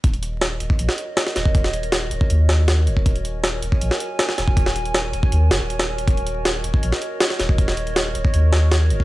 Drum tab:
HH |xxx-x-x-x-x-x-x-|x-xxx-x-x-x-x-x-|xxx-x-x-x-x-x-x-|x-xxx-x-x-x-xx-x|
SD |----o----o--ooo-|-o--o-----o-o---|----o----o--ooo-|-o--o-----o--o--|
BD |o------o-------o|o------o-------o|o------o-------o|o------o--------|

HH |xxx-x-x-x-x-x-x-|x-xxx-x-x-x-x-x-|
SD |----o----o--ooo-|-o--o-----o-o---|
BD |o------o-------o|o------o-------o|